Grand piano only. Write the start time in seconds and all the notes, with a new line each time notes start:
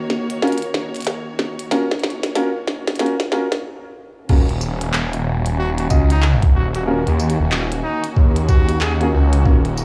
0.42 C#4 F4 F#4 A#4
1.71 C#4 F4 F#4 A#4
2.36 C#4 F4 F#4 A#4
3.00 C#4 F4 F#4 A#4
3.33 C#4 F4 F#4 A#4
4.30 C#4 F4 F#4 A#4
5.91 C#4 F4 F#4 D#5
6.87 C#4 F4 F#4 A#4
9.01 C#4 F4 F#4 A#4
9.46 C#4 F4 F#4 A#4